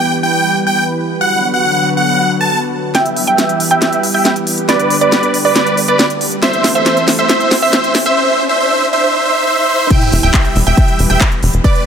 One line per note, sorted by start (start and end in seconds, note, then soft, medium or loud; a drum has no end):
0.00 1.19 E3 medium
0.00 1.17 G3 medium
0.00 1.17 B3 medium
0.00 1.17 G4 medium
0.00 2.91 B4 medium
0.00 0.14 G5 medium
0.23 0.57 G5 medium
0.67 0.84 G5 medium
1.21 2.93 D3 medium
1.21 2.93 F#3 medium
1.21 2.93 B3 medium
1.21 2.93 F#4 medium
1.21 1.47 F#5 loud
1.54 1.88 F#5 medium
1.97 2.31 F#5 loud
2.41 2.58 A5 medium
2.95 4.67 E3 medium
2.95 6.39 G3 medium
2.95 6.39 B3 medium
2.95 6.39 G4 medium
2.95 4.67 B4 medium
2.95 3.21 E5 medium
2.95 3.21 G5 loud
2.95 3.21 G5 medium
2.95 snare soft
2.95 closed hi-hat medium
2.95 riser medium
3.06 closed hi-hat medium
3.17 open hi-hat loud
3.27 3.62 E5 medium
3.27 3.62 G5 loud
3.27 closed hi-hat soft
3.38 snare soft
3.38 closed hi-hat medium
3.49 closed hi-hat medium
3.60 open hi-hat loud
3.71 4.05 E5 medium
3.71 4.05 G5 medium
3.71 closed hi-hat medium
3.82 snare medium
3.82 closed hi-hat medium
3.93 closed hi-hat medium
4.03 open hi-hat loud
4.14 4.32 E5 medium
4.14 4.32 G5 medium
4.14 open hi-hat medium
4.25 snare medium
4.25 closed hi-hat medium
4.36 closed hi-hat medium
4.47 open hi-hat loud
4.58 closed hi-hat medium
4.69 6.41 D3 medium
4.69 6.41 B4 medium
4.69 4.95 B4 medium
4.69 4.94 D5 loud
4.69 4.95 D5 medium
4.69 snare medium
4.69 closed hi-hat medium
4.80 closed hi-hat soft
4.90 open hi-hat loud
5.01 5.36 B4 medium
5.01 5.36 D5 medium
5.01 5.36 D5 loud
5.01 closed hi-hat soft
5.12 snare medium
5.12 closed hi-hat medium
5.23 closed hi-hat soft
5.34 open hi-hat loud
5.45 5.79 B4 medium
5.45 5.79 D5 medium
5.45 open hi-hat medium
5.56 snare medium
5.56 closed hi-hat medium
5.67 closed hi-hat soft
5.77 open hi-hat loud
5.88 6.05 B4 medium
5.88 6.05 D5 medium
5.88 closed hi-hat medium
5.99 snare medium
5.99 closed hi-hat medium
6.10 closed hi-hat medium
6.21 open hi-hat loud
6.32 closed hi-hat medium
6.43 8.15 E3 medium
6.43 8.15 A3 medium
6.43 8.15 C4 medium
6.43 8.15 A4 medium
6.43 8.15 C5 medium
6.43 6.68 C5 medium
6.43 6.68 E5 medium
6.43 snare medium
6.43 closed hi-hat medium
6.53 closed hi-hat soft
6.64 snare medium
6.64 open hi-hat loud
6.75 7.10 C5 medium
6.75 7.10 E5 medium
6.75 closed hi-hat soft
6.86 snare medium
6.86 closed hi-hat medium
6.97 closed hi-hat soft
7.08 snare medium
7.08 open hi-hat loud
7.19 7.28 C5 medium
7.19 7.28 E5 medium
7.19 closed hi-hat medium
7.29 7.55 C5 medium
7.29 7.55 E5 loud
7.29 7.55 E5 medium
7.29 snare medium
7.29 closed hi-hat medium
7.40 closed hi-hat soft
7.51 snare medium
7.51 open hi-hat loud
7.62 7.97 C5 medium
7.62 7.97 E5 medium
7.62 open hi-hat medium
7.73 snare medium
7.73 closed hi-hat medium
7.84 closed hi-hat medium
7.95 snare medium
7.95 open hi-hat loud
8.06 8.15 C5 medium
8.06 8.15 E5 medium
8.06 closed hi-hat medium
8.17 8.43 C5 medium
8.17 8.43 E5 loud
8.49 8.58 C5 medium
8.49 8.58 E5 loud
8.60 8.86 C5 medium
8.60 8.86 E5 loud
8.93 9.02 C5 medium
8.93 9.02 E5 medium
9.04 9.24 C5 medium
9.04 9.24 E5 loud
9.25 9.45 C5 medium
9.25 9.45 E5 loud
9.47 9.67 C5 medium
9.47 9.67 E5 loud
9.69 9.89 C5 medium
9.69 9.89 E5 loud
9.90 11.63 E3 medium
9.90 11.63 G3 medium
9.90 11.86 B3 medium
9.90 11.63 G4 medium
9.90 11.63 B4 medium
9.90 10.16 E5 medium
9.90 10.16 G5 loud
9.90 kick loud
9.90 closed hi-hat medium
9.90 crash loud
9.90 sub drop medium
10.01 closed hi-hat medium
10.12 10.19 E1 medium
10.12 open hi-hat loud
10.23 10.30 D1 medium
10.23 10.58 E5 medium
10.23 10.58 G5 loud
10.23 closed hi-hat medium
10.34 kick loud
10.34 clap loud
10.34 closed hi-hat medium
10.45 closed hi-hat medium
10.56 10.63 E1 loud
10.56 open hi-hat loud
10.67 10.74 E1 medium
10.67 11.01 E5 medium
10.67 11.01 G5 loud
10.67 11.01 G5 medium
10.67 closed hi-hat medium
10.77 kick loud
10.77 closed hi-hat medium
10.88 closed hi-hat medium
10.99 11.06 E1 medium
10.99 open hi-hat loud
11.10 11.17 E1 medium
11.10 11.27 E5 medium
11.10 11.27 G5 medium
11.10 closed hi-hat medium
11.21 kick loud
11.21 clap loud
11.21 closed hi-hat medium
11.32 closed hi-hat medium
11.43 11.50 E1 loud
11.43 open hi-hat loud
11.53 11.61 E1 medium
11.53 closed hi-hat medium
11.64 11.86 D3 medium
11.64 11.86 G3 medium
11.64 11.86 G4 medium
11.64 11.86 B4 medium
11.64 11.86 D5 loud
11.64 kick loud
11.64 closed hi-hat medium
11.75 closed hi-hat medium